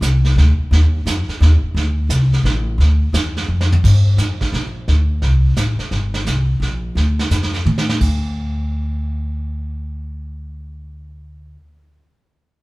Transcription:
0.01 C2, snare, hi-hat pedal
0.25 snare
0.36 D2, snare
0.58 muted upright bass stroke
0.71 D#2, brush sweep, snare
1.06 F2, snare, hi-hat pedal
1.28 muted upright bass stroke, snare
1.40 D#2, snare
1.63 muted upright bass stroke
1.74 D2, brush sweep, snare
2.09 C2, snare, hi-hat pedal
2.33 snare
2.43 A1, snare
2.78 D2, brush sweep, snare
3.13 E2, snare, hi-hat pedal
3.37 snare
3.48 F2
3.61 snare
3.72 floor tom
3.84 G2, brush sweep, kick, snare, crash
4.17 F2, snare, hi-hat pedal
4.40 muted upright bass stroke, kick, snare
4.53 A#1, snare
4.88 D2, brush sweep, snare
5.22 C2, snare
5.57 A1, snare, hi-hat pedal
5.79 muted upright bass stroke, snare
5.91 G1, brush sweep, snare
6.14 snare
6.25 C2, snare, hi-hat pedal
6.60 A#1, snare
6.95 D2, brush sweep, snare
7.19 snare
7.30 F2, snare, hi-hat pedal
7.43 snare
7.54 snare
7.66 A2, high tom
7.78 snare
7.89 snare
8.01 D2, kick, crash

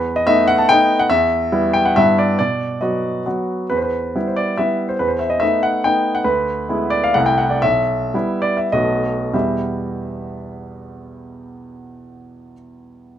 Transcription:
Already playing: E2 B4
0.16 D#5
0.27 A3 B3 D#4 E5
0.48 F#5
0.58 A5
0.69 A3 B3 D#4 G5
0.99 F#5
1.10 E2 E5
1.52 G3 B3 E4
1.73 G5
1.85 F#5
1.96 G2 G3 B3 E4 E5
2.19 D5
2.39 B2 D5
2.81 F#3 B3 F#4 D#5
3.26 F#3 B3 F#4
3.70 E2 B4
3.77 C5
3.82 B4
4.16 G3 B3 E4
4.27 C5
4.36 D5
4.58 G3 B3 E4 E5
4.88 C5
4.99 E2 B4
5.08 C5
5.19 E5
5.30 D#5
5.40 A3 B3 D#4 E5
5.63 F#5
5.84 A3 B3 D#4 G5
6.15 F#5
6.24 D2 B4
6.69 G#3 B3 E4
6.90 D5
7.04 F5
7.14 C2 A3 E4 F#5
7.26 G5
7.38 F#5
7.50 D5
7.62 B1 E5
8.14 G3 B3 E4
8.42 D5
8.57 E5
8.72 B1 A3 B3 F#4 D#5
9.33 E2 B2 G3 B3 E4 G4 E5

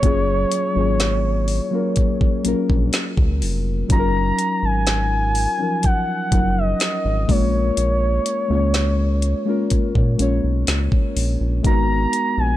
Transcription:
Already playing: C#5, downlifter
0.01 F#1 F#3 A#3 C#4 F4, kick, closed hi-hat
0.06 G#4
0.52 closed hi-hat
0.74 G#1 F#3 A#3 C#4 F4
0.78 G#4
1.00 snare, closed hi-hat
1.48 open hi-hat
1.71 F#3 A#3 C#4 F4
1.75 A#4
1.96 kick, closed hi-hat
2.21 kick
2.43 A#1 F#3 A#3 C#4 F4, closed hi-hat
2.48 A#4
2.70 A#1, kick
2.93 snare, closed hi-hat
3.17 C#2, kick
3.42 F1, open hi-hat
3.88 F#1 F#3 C#4 D#4 F4 A#5, kick, closed hi-hat
3.93 G#4
3.99 A#4
4.39 closed hi-hat
4.63 G#1 G#5
4.87 snare, closed hi-hat
5.35 open hi-hat
5.58 F3 F#3 C#4 D#4
5.62 A#4
5.83 F#5, kick, closed hi-hat
6.30 F#1 F#3 C#4 D#4 F4, kick, closed hi-hat
6.35 A#4
6.58 D#5
6.80 snare, closed hi-hat
7.05 G#1
7.27 A#1 G#3 A#3 C#4 F4 C#5, kick, open hi-hat
7.32 A#4
7.77 A#1, closed hi-hat
8.26 closed hi-hat
8.48 C#2 G#3 A#3 C#4 F4
8.53 C#5
8.74 snare, closed hi-hat
9.22 closed hi-hat
9.45 G#3 A#3 C#4 F4
9.50 A#4
9.70 kick, closed hi-hat
9.95 A#2, kick
10.18 A#1 G#3 A#3 C#4 F4, closed hi-hat
10.22 C#5
10.44 B1
10.67 C#2, snare, closed hi-hat
10.92 kick
11.16 A#1, open hi-hat
11.41 A#1
11.63 G#1 G#3 B3 D#4 F#4 A#5, kick, closed hi-hat
11.67 A#4
12.13 closed hi-hat
12.38 A#1 G#5

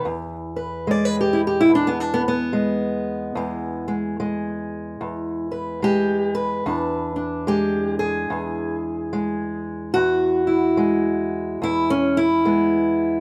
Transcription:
0.05 E2
0.56 B4
0.87 G#3 D5
1.05 B4
1.21 G4
1.33 E4
1.47 G4
1.61 E4
1.69 E2
1.75 D4
1.87 B3
2.00 D4
2.14 B3
2.28 B3
2.53 G#3
3.35 E2 G#3
3.88 G#3
4.20 G#3
5.01 E2
5.51 B4
5.82 G#3 G4
6.35 B4
6.66 E2 D4
7.16 D4
7.47 G#3 G4
7.99 G#4
8.30 E2
9.13 G#3
9.94 E2 F#4
10.47 E4
10.77 G#3
11.62 E2 E4
11.90 C#4
12.17 E4
12.45 G#3 B3

